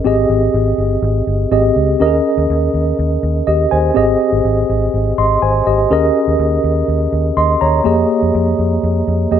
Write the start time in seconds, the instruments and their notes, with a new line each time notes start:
0.04 fingered electric bass G#1, tine electric piano C4 G4 G#4 D#5
0.30 fingered electric bass G#1
0.54 fingered electric bass G#1
0.78 fingered electric bass G1
1.02 fingered electric bass G#1
1.27 fingered electric bass G1
1.51 fingered electric bass G#1, tine electric piano C4 G4 G#4 D#5
1.76 fingered electric bass C#2
2.00 fingered electric bass D#2, tine electric piano C#4 G4 A#4 D#5
2.06 tine electric piano G#4
2.38 fingered electric bass D#2
2.50 fingered electric bass D#2
2.74 fingered electric bass D#2
2.99 fingered electric bass D#2
3.23 fingered electric bass D#2
3.47 fingered electric bass D#2, tine electric piano G4 D#5
3.71 fingered electric bass D#2, tine electric piano C5 G#5
3.94 fingered electric bass G#1, tine electric piano C4 G4 G#4 D#5
4.32 fingered electric bass G#1
4.45 fingered electric bass G#1
4.69 fingered electric bass G#1
4.94 fingered electric bass G#1
5.18 fingered electric bass G#1, tine electric piano D#5 C6
5.42 fingered electric bass G#1, tine electric piano C5 G#5
5.67 fingered electric bass G#1, tine electric piano G4 D#5
5.90 fingered electric bass D#2, tine electric piano C#4 G#4 A#4 D#5
6.28 fingered electric bass D#2
6.39 fingered electric bass D#2
6.64 fingered electric bass D#2
6.88 fingered electric bass D#2
7.13 fingered electric bass D#2
7.37 fingered electric bass D#2, tine electric piano D#5 C6
7.61 fingered electric bass D#2, tine electric piano C#5 A#5
7.84 fingered electric bass F2, tine electric piano A#3 G4 G#4 D#5
8.23 fingered electric bass F2
8.35 fingered electric bass F2
8.59 fingered electric bass F2
8.83 fingered electric bass F2
9.08 fingered electric bass F2
9.31 fingered electric bass F2, tine electric piano A#3 G4 G#4 D#5